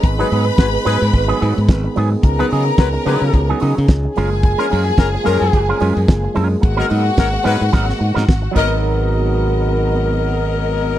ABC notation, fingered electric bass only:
X:1
M:4/4
L:1/16
Q:"Swing 16ths" 1/4=109
K:G#dor
V:1 name="Fingered electric bass" clef=bass
G,,,2 G,,2 G,,,2 G,, G,, G,,,2 G,, G,, G,,,2 G,,2 | C,,2 C,2 C,,2 C, C, C,,2 C, C, C,,2 F,,,2- | F,,,2 F,,2 F,,,2 F,, F,, F,,,2 F,, F,, F,,,2 F,,2 | G,,,2 G,,2 G,,,2 G,, G,, G,,,2 G,, G,, G,,,2 G,,,2- |
G,,,16 |]